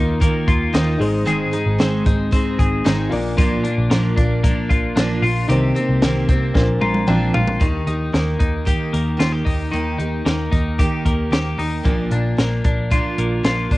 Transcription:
Already playing: D#2 D#3 A#3 D#4 F4 A#4
0.20 D#3 A#3 D#4 F4, kick, closed hi-hat
0.48 D#2 F4, kick, closed hi-hat
0.73 D#2 D#3 A#3 D#4 F4, snare, closed hi-hat
0.98 G#1 G#2 G#3 C4 D#4 G#4 C5, open hi-hat
1.25 G#2 D#3 G#3 C4 D#4 G#4, closed hi-hat
1.51 G#3 C4 D#4 G#4, closed hi-hat
1.66 G#1
1.79 G#1 G#2 D#3 G#3 C4 D#4 G#4, snare, closed hi-hat
2.04 G#1 G#3 C4 D#4 G#4, kick, closed hi-hat
2.31 G#3 C4 D#4 G#4, kick, closed hi-hat
2.59 G#1 G#4, kick, closed hi-hat
2.84 G#1 G#2 D#3 G#3 C4 D#4 G#4, snare, closed hi-hat
3.10 A#1 A#2 D4 F4 A#4 D5, open hi-hat
3.15 A#3
3.38 A#2 F3 A#3 D4 F4, kick, closed hi-hat
3.64 A#3 D4 F4, closed hi-hat
3.78 A#1
3.90 A#1 A#2 F3 A#3 D4 F4, snare, closed hi-hat
4.17 A#1 A#3 D4 F4, kick, closed hi-hat
4.44 F3 A#3 D4 F4, kick, closed hi-hat
4.69 A#1 F4, kick, closed hi-hat
4.96 A#1 A#2 F3 A#3 D4 F4, snare, closed hi-hat
5.22 A#1 A#3 D4 F4, open hi-hat
5.48 C2 C3 D#3 A#3 C4 D#4 G4 A#4 C5, closed hi-hat
5.75 A#3 C4 G4, closed hi-hat
5.89 C2
6.02 C2 C3 D#3 A#3 C4 G4, snare, closed hi-hat
6.28 C2 A#3 C4 G4, kick, closed hi-hat
6.54 A#1 A#2 F3 C4 D4 F4 A#4 C5, kick, snare
6.81 A#1 F4 A#5, high tom
6.94 high tom
7.07 A#1 A#2 F3 C4 D4 F4 G5, mid tom
7.33 A#1 C4 D4 F4 F5, floor tom
7.47 floor tom
7.60 D#2 D#3 A#3 D#4 G4, kick, closed hi-hat
7.87 D#2 A#3 D#4 G4, closed hi-hat
8.12 D#2 D#3 A#3 D#4 G4, snare, closed hi-hat
8.39 D#2 D#4, kick, closed hi-hat
8.65 D#3 A#3 D#4 G4, kick, closed hi-hat
8.93 D#2 A#3, closed hi-hat
9.17 D#2 D#3 A#3 D#4 F4 G4, snare, closed hi-hat
9.33 G4
9.45 D#2 D#4, kick, open hi-hat
9.72 D#2 D#3 A#3 D#4 G4, closed hi-hat
9.99 D#2 A#3 D#4 G4, closed hi-hat
10.26 D#2 D#3 A#3 D#4 G4, snare, closed hi-hat
10.52 D#2 D#4, kick, closed hi-hat
10.79 D#3 A#3 D#4 G4, kick, closed hi-hat
11.06 D#2 A#3, kick, closed hi-hat
11.31 D#2 D#3 A#3 D#4 G4, snare, closed hi-hat
11.58 D#2 A#3 D#4 G4, open hi-hat
11.83 A#1 A#2 F3 A#3 D4 F4, kick, closed hi-hat
12.11 A#1 A#3 D4 F4, closed hi-hat
12.37 A#1 F3 A#3 D4 F4, snare, closed hi-hat
12.65 A#1 D4, kick, closed hi-hat
12.90 A#2 F3 A#3 D4 F4, kick, closed hi-hat
13.18 A#1 A#3, closed hi-hat
13.43 A#1 F3 A#3 D4 F4, snare, closed hi-hat
13.69 A#1 A#3 D4 F4, kick, open hi-hat

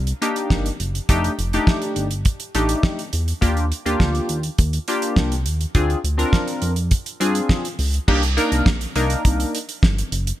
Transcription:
Already playing: C2
0.07 closed hi-hat
0.22 A#3 D4 D#4 G4, closed hi-hat
0.36 closed hi-hat
0.50 G1, kick, snare
0.66 closed hi-hat
0.80 F#1, closed hi-hat
0.95 closed hi-hat
1.09 F1 A3 D4 D#4 G4, kick, closed hi-hat
1.24 closed hi-hat
1.39 F1, closed hi-hat
1.53 A3 D4 D#4 G4, closed hi-hat
1.67 kick, snare
1.82 closed hi-hat
1.96 G1, closed hi-hat
2.11 closed hi-hat
2.25 kick, closed hi-hat
2.40 closed hi-hat
2.55 A1 A3 D4 D#4 G4, closed hi-hat
2.69 closed hi-hat
2.83 kick, snare
2.99 closed hi-hat
3.13 E2, closed hi-hat
3.28 closed hi-hat
3.41 D#2 A#3 D4 F4 G4, kick, closed hi-hat
3.57 closed hi-hat
3.72 closed hi-hat
3.86 D#2 A#3 D4 F4 G4, closed hi-hat
4.00 D2, kick, snare
4.15 closed hi-hat
4.29 D#2, closed hi-hat
4.43 closed hi-hat
4.58 D#2, kick, closed hi-hat
4.73 closed hi-hat
4.88 A#3 D4 F4 G4, closed hi-hat
5.02 closed hi-hat
5.16 C2, kick, snare
5.32 closed hi-hat
5.45 D#2, closed hi-hat
5.61 closed hi-hat
5.75 D2 C4 D4 F4 G#4, kick, closed hi-hat
5.90 closed hi-hat
6.04 D2, closed hi-hat
6.18 C4 D4 F4 A#4, closed hi-hat
6.33 kick, snare
6.48 closed hi-hat
6.62 F2, closed hi-hat
6.76 closed hi-hat
6.91 kick, closed hi-hat
7.06 closed hi-hat
7.20 G2 C4 D4 F4 G#4, closed hi-hat
7.35 closed hi-hat
7.49 kick, snare
7.65 closed hi-hat
7.79 C#2, open hi-hat
7.94 closed hi-hat
8.08 C2 A#3 D4 D#4 G4, kick, crash
8.23 closed hi-hat
8.37 A#3 D4 D#4 A#4, closed hi-hat
8.52 C2, closed hi-hat
8.66 A#1, kick, snare
8.81 closed hi-hat
8.96 C2 A#3 D4 D#4 A#4, closed hi-hat
9.10 closed hi-hat
9.25 C2, kick, closed hi-hat
9.40 closed hi-hat
9.55 closed hi-hat
9.69 closed hi-hat
9.83 G1, kick, snare
9.98 closed hi-hat
10.12 F#1, closed hi-hat
10.27 closed hi-hat

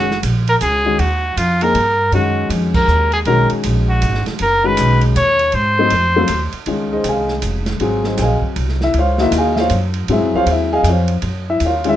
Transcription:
Already playing: F#1 F#4
0.11 snare
0.23 A#1, hi-hat pedal, ride
0.47 A#4, ride
0.61 C#2 G#4, hi-hat pedal, ride
0.85 D#3 G#3 C#4 F#4
0.99 D#2 F#4, ride
1.36 F2 F4, hi-hat pedal, ride
1.61 F3 A#3 D#4 G#4 A#4, ride
1.75 G2, ride
2.12 F#2 D#3 G#3 C#4 F#4, ride
2.49 F2, hi-hat pedal, ride
2.74 A#4, kick, crash
2.88 D#2, hi-hat pedal
3.12 G#4, ride
3.25 B1 D#3 G#3 C#4 F#4 A#4, ride
3.50 muted upright bass stroke, ride
3.63 A#1, hi-hat pedal, ride
3.89 F#4
4.02 G#1, hi-hat pedal, ride
4.14 snare
4.26 muted upright bass stroke, snare, ride
4.39 F#1 A#4, ride
4.64 D#3 G#3 C#4 F#4 B4
4.77 B1, hi-hat pedal, ride
5.01 ride
5.15 D#2 C#5, hi-hat pedal, ride
5.39 ride
5.52 G#2 C5, ride
5.79 F#3 A3 C4 D#4
5.90 F2, ride
6.16 F#3 A3 C4 F4
6.28 D#2, hi-hat pedal, ride
6.52 muted upright bass stroke, ride
6.66 C#2 D#3 G#3 C#4 F4, ride
6.92 D#4 G#4 C5 D#5
7.04 C2 G5, hi-hat pedal, ride
7.09 G#4 D#5 F5 G#5
7.28 snare
7.42 F1, hi-hat pedal, ride
7.66 snare, ride
7.80 G#1 F#3 C4 F4 G#4, ride
8.04 D#4 G#4 C5 D#5, snare
8.18 A#1 G5, snare, hi-hat pedal, ride
8.22 G#4 D#5 F5 G#5
8.42 muted upright bass stroke, kick
8.56 C2, ride
8.69 snare
8.81 E4 E5, snare
8.94 C#2, ride
8.99 F4 C5 C#5 F5
9.18 A#3 D#4 F4 F#4, snare
9.22 E4 E5
9.32 D#2, hi-hat pedal, ride
9.38 G#4 D#5 F5 G#5
9.55 E5, snare
9.59 F4 C5 C#5 F5
9.70 F#2, hi-hat pedal, ride
9.94 ride
10.08 G#2 F#3 C4 F4 G#4, ride
10.12 E4 E5
10.21 F2
10.34 C#2 F4 C5 C#5 F5
10.46 D#2, ride
10.52 E4 E5
10.73 G#4 D#5 F5 G#5
10.83 F2, hi-hat pedal, ride
10.89 F4 C5 C#5 F5
11.08 ride
11.22 F#2, ride
11.50 E4 E5
11.60 D#2, hi-hat pedal, ride
11.65 F4 A#4 C#5 F5
11.84 D#3 G#3 C#4 F4, ride
11.89 E4 E5

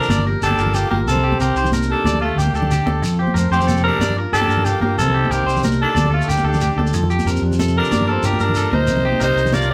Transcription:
Already playing: F3 D4 A#4
0.02 low conga, shekere
0.08 G1 G2 D5, high conga, low conga, shekere
0.19 low conga
0.26 G4 A#4
0.42 G1 A#3 D4 G4 A4, shekere
0.51 high conga
0.58 G1 F4 A#4, shekere
0.66 low conga
0.74 G2 A#3 G4 A4, shekere
0.91 G1 A#3 F4 G4 A#4, high conga
1.07 C2 C3 C4 A4, shekere
1.15 low conga
1.24 G4, low conga
1.32 high conga
1.39 C2 C4 G4 A#4, shekere
1.48 low conga
1.55 C2 D#4 C5, shekere
1.64 low conga, shekere
1.72 G2 A#4, high conga, shekere
1.82 shekere
1.89 D4 G4 A4
2.04 D2 D3 D5, high conga, low conga, shekere
2.13 low conga
2.21 G3 A3 F4 A4
2.36 D2 G3 G4, shekere
2.41 A#3
2.46 high conga
2.53 D2 G3 G4 A4, shekere
2.58 D4
2.62 low conga
2.71 D3 G4, shekere
2.86 D2 G3 A4, high conga
3.02 F2 F3, shekere
3.19 G4 C5, low conga
3.27 high conga
3.34 F2 A3 A#4 C5, shekere
3.44 low conga
3.51 F2 A3 C4 G4 C5, shekere
3.60 low conga, shekere
3.67 C3 A4, high conga, shekere
3.77 shekere
3.84 D4 G4 A#4
3.99 G2 D5, high conga, low conga, shekere
4.10 low conga
4.18 F4 A#4
4.32 G2 A#3 D4 G4 A4, shekere
4.41 high conga
4.48 G2 D4 A#4, shekere
4.57 low conga
4.65 G2 G4 A4, shekere
4.69 A#3
4.80 G2 F4 G4 A#4, high conga
4.85 A#3
4.97 C2 C3 C4 A4, shekere
5.08 low conga
5.14 D#4 G4, low conga
5.25 high conga
5.30 C2 G3 C4 D#4 G4 A#4, shekere
5.41 low conga
5.46 C2 D4 C5, shekere
5.56 low conga, shekere
5.63 G2 A#4, high conga, shekere
5.72 shekere
5.80 D4 D#4 A4
5.95 D2 D3 D5, high conga, low conga, shekere
6.05 low conga
6.11 D4 F4 A4
6.17 A3
6.22 shekere
6.28 D2 G3 A#3 D4 G4, shekere
6.37 high conga, low conga, shekere
6.44 D2 D4 A4
6.48 D4 G4
6.53 low conga, shekere
6.61 A2 G4, low conga, shekere
6.71 low conga
6.76 D2 D4 A4, high conga, low conga
6.86 low conga, shekere
6.93 F2 F3, shekere
7.03 low conga
7.10 G4, shekere
7.19 high conga, shekere
7.25 F2 C4 A#4, low conga, shekere
7.30 G4
7.36 shekere
7.42 F2 D4
7.51 F4, low conga, shekere
7.59 C3 A4, high conga, shekere
7.68 shekere
7.77 D4 G4 A#4
7.84 low conga, shekere
7.91 G2 D5, high conga, low conga, shekere
8.01 low conga
8.08 F4 A4 A#4
8.12 C4
8.23 G2 G3 D4 F4 G4 A#4, shekere
8.33 high conga
8.40 G2 D4 A#4, shekere
8.49 low conga
8.55 A2 A4, shekere
8.72 D2 A#2 D#4 A#4 C5, high conga
8.87 C2 C3, shekere
8.96 low conga
9.05 D#4 G4, low conga
9.12 high conga
9.20 C2 G3 D#4 G4 A#4 C5, shekere
9.29 low conga
9.36 C2 D4, shekere
9.45 low conga, shekere
9.52 G2 F4 A#4 D5, high conga, shekere
9.62 shekere
9.70 D5

